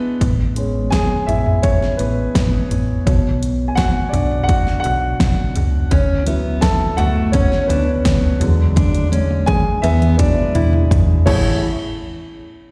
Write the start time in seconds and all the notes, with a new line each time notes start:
Already playing: B3 E4 B4 E5
0.21 A1, kick, closed hi-hat
0.56 G#3 B3 C#4, closed hi-hat
0.90 G#4 G#5, kick, snare, closed hi-hat
1.27 A1 E4 E5, closed hi-hat, floor tom
1.46 floor tom
1.63 C#4 C#5, kick, closed hi-hat
1.82 snare
1.97 A1 B3 B4, closed hi-hat
2.35 A1, kick, snare, closed hi-hat
2.71 A1, closed hi-hat, floor tom
3.05 B1 B2 B3 C#5, kick, closed hi-hat
3.43 closed hi-hat
3.68 G#5
3.75 F#4 F#5, kick, snare, closed hi-hat
4.09 D4 D5
4.13 B1, closed hi-hat, floor tom
4.31 floor tom
4.44 F#5
4.48 F#4, kick, closed hi-hat
4.67 snare
4.80 F#5
4.84 B1 F#4, closed hi-hat
5.20 B1, kick, snare, closed hi-hat
5.56 C#2, closed hi-hat, floor tom
5.91 D2 C#4, kick, closed hi-hat
6.26 F#3 B3 E4, closed hi-hat
6.61 A4 A5, kick, snare, closed hi-hat
6.97 D2 A3 F#4 F#5, closed hi-hat, floor tom
7.16 floor tom
7.32 C#4 C#5, kick, closed hi-hat
7.52 snare
7.60 C#5
7.67 D2 B3 D4 B4, closed hi-hat
8.05 D2, kick, snare, closed hi-hat
8.40 E2 D3 F#3 G#3, closed hi-hat, floor tom
8.76 D4, kick, closed hi-hat, high tom
8.94 closed hi-hat
9.12 C#4, closed hi-hat, high tom
9.31 high tom
9.46 G#4 G#5, kick, closed hi-hat, mid tom
9.82 E2 B3 E4 E5, closed hi-hat, mid tom
10.02 closed hi-hat, mid tom
10.18 F#3 G#3 D4 D5, kick, closed hi-hat, mid tom
10.55 E2 E4, closed hi-hat, mid tom
10.73 mid tom
10.91 E2, kick, closed hi-hat, floor tom
11.26 A1 A3 E4 G#4 C#5, kick, crash